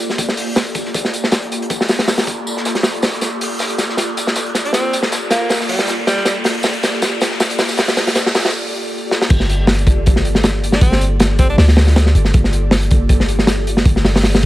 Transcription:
Already playing: riser
0.10 snare
0.18 A#3 F4 G4 A4 D5, kick, closed hi-hat, tambourine
0.28 snare
0.37 closed hi-hat, open hi-hat
0.55 snare, open hi-hat, tambourine
0.67 closed hi-hat
0.75 kick, closed hi-hat, tambourine
0.85 snare
0.94 kick, closed hi-hat, tambourine
1.05 snare
1.13 closed hi-hat, tambourine
1.24 snare
1.32 snare, closed hi-hat, tambourine
1.43 closed hi-hat
1.52 closed hi-hat, tambourine
1.62 closed hi-hat
1.70 A#3 F4 G4 A4 D5, kick, closed hi-hat, tambourine
1.81 snare
1.88 snare, open hi-hat, tambourine
1.99 snare, open hi-hat
2.08 snare, open hi-hat, tambourine
2.18 snare, open hi-hat
2.27 kick, closed hi-hat, tambourine
2.47 tambourine
2.57 snare
2.65 snare, closed hi-hat, tambourine
2.75 snare, closed hi-hat
2.83 snare, open hi-hat, tambourine
2.94 closed hi-hat
3.02 snare, open hi-hat, tambourine
3.14 snare, closed hi-hat
3.21 A#3 F4 G4 A4 D5, snare, closed hi-hat, tambourine
3.41 closed hi-hat, open hi-hat
3.59 snare, open hi-hat, tambourine
3.70 closed hi-hat
3.78 snare, closed hi-hat, tambourine
3.89 snare
3.97 snare, closed hi-hat, tambourine
4.17 closed hi-hat, tambourine
4.27 snare
4.36 snare, closed hi-hat, tambourine
4.46 closed hi-hat
4.55 snare, closed hi-hat, tambourine
4.65 D4, closed hi-hat
4.73 A#3 C4 F4 G4 A4 D5, snare, closed hi-hat, tambourine
4.93 closed hi-hat, tambourine
5.02 snare
5.12 snare, closed hi-hat, tambourine
5.30 A#3, snare, closed hi-hat, tambourine
5.49 snare, open hi-hat, tambourine
5.60 snare
5.69 G3, open hi-hat
5.79 snare
5.87 snare, closed hi-hat, tambourine
6.07 G3, snare, closed hi-hat, tambourine
6.17 snare
6.25 A#3 F4 G4 A4 D5, snare, closed hi-hat, tambourine
6.44 snare, closed hi-hat, open hi-hat
6.63 snare, open hi-hat, tambourine
6.74 closed hi-hat
6.83 snare, closed hi-hat, tambourine
6.93 snare
7.02 snare, closed hi-hat, tambourine
7.21 snare, closed hi-hat, tambourine
7.31 snare
7.40 snare, closed hi-hat, tambourine
7.50 closed hi-hat
7.59 snare, open hi-hat, tambourine
7.69 snare, open hi-hat, tambourine
7.77 A#3 F4 G4 A4 D5, snare, open hi-hat, tambourine
7.87 snare, open hi-hat, tambourine
7.97 snare, open hi-hat, tambourine
8.07 snare, open hi-hat
8.15 snare, closed hi-hat, tambourine
8.26 snare
8.35 snare, open hi-hat, tambourine
8.40 snare, tambourine
8.45 snare, open hi-hat, tambourine
8.49 snare, tambourine
9.11 snare
9.22 snare
9.29 G1 A#3 F4 G4 A4 D5, kick, closed hi-hat, crash
9.40 snare
9.49 closed hi-hat
9.67 snare, open hi-hat
9.79 closed hi-hat
9.87 kick, closed hi-hat
10.06 kick, closed hi-hat
10.16 snare
10.25 closed hi-hat
10.35 snare
10.43 snare, closed hi-hat
10.64 closed hi-hat
10.72 D4, snare
10.81 G1 A#3 C4 F4 G4 A4 D5, kick, closed hi-hat
10.92 snare
11.01 closed hi-hat
11.20 snare, closed hi-hat
11.39 C4, kick, closed hi-hat
11.50 D4
11.58 D2 D4, snare, open hi-hat
11.68 snare
11.77 snare, open hi-hat
11.87 snare
11.96 snare, closed hi-hat
12.06 snare
12.15 G1, closed hi-hat
12.25 snare
12.34 G1 A#3 F4 G4 A4 D5, kick, closed hi-hat
12.44 snare
12.53 closed hi-hat
12.71 snare, open hi-hat
12.82 closed hi-hat
12.90 kick, closed hi-hat
13.09 kick, closed hi-hat
13.20 snare
13.28 closed hi-hat
13.39 snare
13.47 snare, closed hi-hat
13.67 closed hi-hat
13.77 snare
13.85 G1 A#3 F4 G4 A4 D5, kick, closed hi-hat
13.96 snare
14.05 snare, open hi-hat
14.15 snare, open hi-hat
14.23 snare, open hi-hat
14.34 snare, open hi-hat
14.43 closed hi-hat

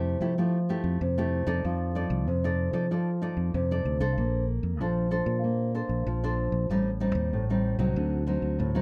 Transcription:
Already playing: F2 C3 A3 E4 G4
0.20 F3 A3 E4 G4
0.38 F3 A3 E4 G4
0.69 A3 E4 G4
0.84 F2
1.01 F2 C3
1.18 A3 E4 G4
1.47 F2 D#4 A4 D5
1.64 F2 F3
1.95 D#4 A4 D5
2.10 C2
2.27 F2 C3
2.44 D#4 A4 D5
2.73 F3 D#4 A4 D5
2.91 F3 D#4 A4 D5
3.22 D#4 A4 D5
3.37 F2
3.54 F2 C3
3.71 D#4 A4 D5
3.85 D2
4.00 C2 D4 A4 C5
4.18 A#1 A#3
4.63 F2
4.80 A#1 F3 D4 A4 C5
5.11 D4 A4 C5
5.26 A#2
5.44 A#3
5.75 D4 A4 C5
5.89 A#1
6.07 A#1 F3
6.24 D4 A4 C5
6.52 A#1
6.70 A1 A2 G3 C4 D#4
7.00 G3 C4 D#4
7.15 D#2
7.33 A1 A2
7.50 G3 C4 D#4
7.79 C2 F#3 C4 D#4
7.96 D2 D3
8.27 F#3 C4 D#4
8.42 D2
8.59 D2 A2
8.75 F#3 C4 D#4

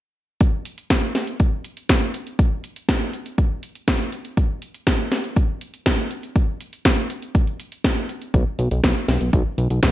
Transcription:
0.41 kick, closed hi-hat
0.65 closed hi-hat
0.78 closed hi-hat
0.90 kick, snare, closed hi-hat
1.15 snare, closed hi-hat
1.27 closed hi-hat
1.40 kick, closed hi-hat
1.64 closed hi-hat
1.77 closed hi-hat
1.89 kick, snare, closed hi-hat
2.14 closed hi-hat
2.27 closed hi-hat
2.39 kick, closed hi-hat
2.64 closed hi-hat
2.76 closed hi-hat
2.89 kick, snare, closed hi-hat
3.13 closed hi-hat
3.26 closed hi-hat
3.38 kick, closed hi-hat
3.63 closed hi-hat
3.75 closed hi-hat
3.88 kick, snare, closed hi-hat
4.12 closed hi-hat
4.25 closed hi-hat
4.37 kick, closed hi-hat
4.62 closed hi-hat
4.74 closed hi-hat
4.87 kick, snare, closed hi-hat
5.12 snare, closed hi-hat
5.24 closed hi-hat
5.36 kick, closed hi-hat
5.61 closed hi-hat
5.74 closed hi-hat
5.86 kick, snare, closed hi-hat
6.11 closed hi-hat
6.23 closed hi-hat
6.36 kick, closed hi-hat
6.61 closed hi-hat
6.73 closed hi-hat
6.85 kick, snare, closed hi-hat
7.10 closed hi-hat
7.22 closed hi-hat
7.35 kick, closed hi-hat
7.47 closed hi-hat
7.60 closed hi-hat
7.72 closed hi-hat
7.84 kick, snare, closed hi-hat
7.97 closed hi-hat
8.09 closed hi-hat
8.22 closed hi-hat
8.34 B1, kick, closed hi-hat
8.59 B1, closed hi-hat
8.71 B1, closed hi-hat
8.84 B1, kick, snare, closed hi-hat
9.08 B1, snare, closed hi-hat
9.21 B1, closed hi-hat
9.33 B1, kick, closed hi-hat
9.58 B1, closed hi-hat
9.70 B1, closed hi-hat
9.83 B1, kick, snare, closed hi-hat

